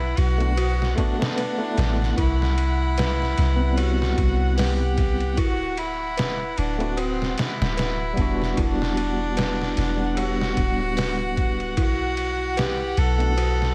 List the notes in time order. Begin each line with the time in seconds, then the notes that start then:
Already playing: B1 E4 B4 F#5
0.17 B1 F#4, ride
0.38 A3 B3 D4, ride
0.42 F#4
0.57 F#4, ride
0.82 snare
0.96 A3 B3 D4 F#4, kick, ride
1.18 A3 B3 D4, snare
1.22 B4
1.37 B4, ride
1.58 A3 B3 D4
1.62 E4
1.78 A1, snare, ride
2.02 snare
2.17 C2 E4, kick, ride
2.42 snare
2.58 ride
2.98 B4, snare, ride
3.22 snare
3.38 C2, snare, ride
3.56 B3 C4
3.62 G3 E4
3.77 F#4 G4, ride
4.02 snare
4.18 C2, kick, ride
4.57 G4 B4, snare, open hi-hat
4.98 kick, ride
5.20 ride
5.37 D1 E4 F#4, kick, ride
5.77 E4, ride
6.17 B4, snare, ride
6.58 D1 D4, ride
6.78 A3 C4 E4, ride
6.83 F#4
6.97 C4 F#4, ride
7.22 snare
7.38 E4, snare, ride
7.61 D1, snare
7.77 B4, snare, ride
8.13 G3 B3
8.17 E1 D4, kick, ride
8.22 F#4
8.42 snare
8.57 E1 D4 E4 F#5, kick, ride
8.82 snare
8.97 ride
9.37 B4, snare, ride
9.62 snare
9.77 E1, snare, ride
9.97 G3 B3
10.02 D4 F#5
10.17 F#4 G4, ride
10.41 snare
10.57 D1, kick, ride
10.97 B4, snare, open hi-hat
11.37 kick, ride
11.60 ride
11.77 B1 E4 F#4, kick, ride
12.17 ride
12.57 G4 B4, snare, ride
12.97 B1 A4, ride
13.18 A3 B3 D4, ride
13.22 F#4
13.37 F#4, ride
13.62 snare